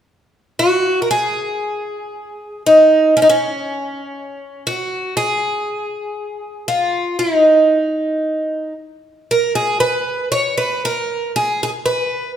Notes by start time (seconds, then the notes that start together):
0.59 F#4
1.02 A#4
1.11 G#4
2.67 D#4
3.17 C#4
3.22 D#4
3.29 C#4
4.67 F#4
5.17 G#4
6.68 F4
7.19 D#4
9.31 A#4
9.55 G#4
9.80 B4
10.32 C#5
10.58 B4
10.85 A#4
11.36 G#4
11.63 G#4
11.86 B4